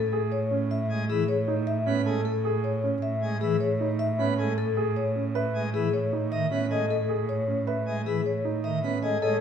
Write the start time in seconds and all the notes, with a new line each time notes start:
Already playing: A2 A4
0.13 G#4
0.32 C#5
0.51 C#4
0.71 E5
0.90 G#3
1.09 E3 G#4
1.28 C#5
1.48 D#4
1.67 E5
1.86 B3 C#4
2.06 G#3 A4
2.25 A4
2.45 G#4
2.64 C#5
2.84 C#4
3.02 E5
3.22 G#3
3.41 E3 G#4
3.60 C#5
3.80 D#4
3.99 E5
4.19 B3 C#4
4.38 G#3 A4
4.58 A4
4.77 G#4
4.96 C#5
5.16 C#4
5.35 B4 E5
5.55 G#3
5.74 E3 G#4
5.93 C#5
6.13 D#4
6.32 D#3 E5
6.51 B3 C#4
6.71 G#3 A4 D#5
6.90 A4
7.09 G#4
7.29 C#5
7.48 C#4
7.67 B4 E5
7.87 G#3
8.06 E3 G#4
8.26 C#5
8.45 D#4
8.64 D#3 E5
8.84 B3 C#4
9.03 G#3 A4 D#5
9.22 A2 G#3 A4 C#5